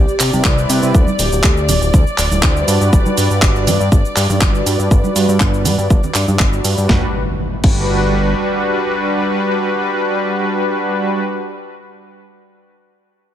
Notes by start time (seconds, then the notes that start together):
Already playing: D5, sub drop
0.08 G4, cabasa
0.20 C3, clap, open hi-hat, cabasa
0.33 C3 G3 C4 E4 B4, high conga, cabasa
0.44 C2, kick, clap, cabasa
0.57 G3 C4 E4 B4, cabasa
0.70 C3, open hi-hat, cabasa
0.83 C3, cabasa
0.94 D2, kick, cabasa
1.07 high conga, cabasa
1.19 D1 G4, open hi-hat, cabasa
1.32 D1, cabasa
1.44 D2, kick, clap, cabasa
1.57 cabasa
1.69 D1, open hi-hat, high conga, low conga, cabasa
1.81 D1 G3 D4 E4 C5, cabasa
1.94 D2, kick, cabasa
2.07 cabasa
2.18 D1, clap, open hi-hat, cabasa
2.31 D1 G3 D4 E4 C5, high conga, cabasa
2.43 D2, kick, clap, cabasa
2.56 G3 D4 F#4 B4, cabasa
2.68 G2, open hi-hat, cabasa
2.81 G2, cabasa
2.93 G1, kick, cabasa
3.06 high conga, cabasa
3.17 G2, open hi-hat, cabasa
3.31 G2, cabasa
3.42 G1, kick, clap, cabasa
3.56 cabasa
3.67 G2, open hi-hat, high conga, low conga, cabasa
3.80 G2 G3 D4 F#4 B4, cabasa
3.92 G1, kick, cabasa
4.05 cabasa
4.16 G2, clap, open hi-hat, cabasa
4.29 G2 G3 D4 F#4 B4, high conga, cabasa
4.41 G1, kick, clap, cabasa
4.54 G3 D4 F#4 B4, cabasa
4.66 G2, open hi-hat, cabasa
4.79 G2, cabasa
4.91 G1, kick, cabasa
5.04 high conga, cabasa
5.16 G2, open hi-hat, cabasa
5.29 G2, cabasa
5.40 G1, kick, clap, cabasa
5.54 cabasa
5.65 G2, open hi-hat, high conga, low conga, cabasa
5.78 G2 G3 D4 F#4 B4, cabasa
5.90 G1, kick, cabasa
6.03 low conga, cabasa
6.14 G2, clap, open hi-hat, cabasa
6.28 G2 G3 D4 F#4 B4, high conga, cabasa
6.39 G1, kick, clap, cabasa
6.53 G3 D4 F#4 B4, cabasa
6.64 G2, open hi-hat, cabasa
6.78 G2, cabasa
6.88 G1 G3 D4 F#4 B4, kick, snare, impact
7.63 G1 G3 D4 F#4 B4, kick, crash